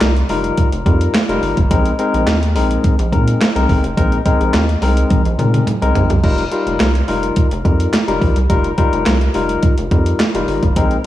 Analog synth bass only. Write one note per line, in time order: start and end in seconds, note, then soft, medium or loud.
0.01 0.23 C2 loud
0.29 0.51 F1 loud
0.72 0.83 F1 medium
0.86 1.08 F2 loud
1.29 1.39 F1 medium
1.42 1.54 G1 medium
1.57 1.68 F1 medium
1.71 1.93 A#1 loud
2.14 2.24 A#1 loud
2.27 2.57 D#2 medium
2.55 2.78 A#1 loud
2.99 3.14 A#1 loud
3.12 3.35 A#2 loud
3.56 3.66 C2 medium
3.69 3.81 G1 medium
3.84 3.94 F1 medium
3.97 4.19 A#1 loud
4.40 4.51 A#1 loud
4.54 4.76 D#2 loud
4.82 5.04 C2 medium
5.26 5.36 A#1 loud
5.39 5.61 A#2 loud
5.82 5.92 C2 medium
5.95 6.07 A#1 loud
6.10 6.21 C2 medium
6.24 6.46 F1 loud
6.67 6.77 F1 loud
6.80 7.02 C2 medium
7.08 7.31 F1 loud
7.52 7.62 F1 loud
7.65 7.87 F2 loud
8.08 8.19 F1 loud
8.22 8.33 A#1 loud
8.37 8.47 C2 medium
8.50 8.72 F1 loud
8.93 9.04 F1 loud
9.07 9.29 C2 loud
9.35 9.57 F1 loud
9.78 9.89 F1 loud
9.91 10.13 F2 loud
10.35 10.45 F1 medium
10.48 10.60 G1 medium
10.63 10.73 F1 medium
10.76 10.99 A#1 loud